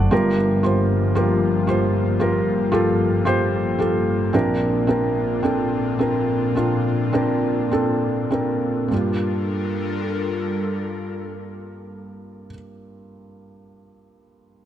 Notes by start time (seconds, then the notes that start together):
Already playing: D4 F#4 A4 C5 D5 F#5
0.11 G1 G2 F3 G3 A#3 F4 G4 A#4
0.63 F4 G4 C5
1.15 F4 G4 A#4
1.67 F4 G4 C5
2.20 F4 G4 A#4
2.72 F4 G4 A4
3.25 F4 G4 C5
3.79 F4 G4 A4
4.33 A#1 A#2 C4 D4 F4 A#4
4.87 C4 D4 A#4
5.43 C4 D4 A4
5.99 C4 D4 A#4
6.55 C4 D4 F4
7.13 C4 D4 A#4
7.71 C4 D4 A4
8.31 C4 D4 A#4
8.88 G2 G3 A#3 D4 F4 A4 A#4
8.94 G4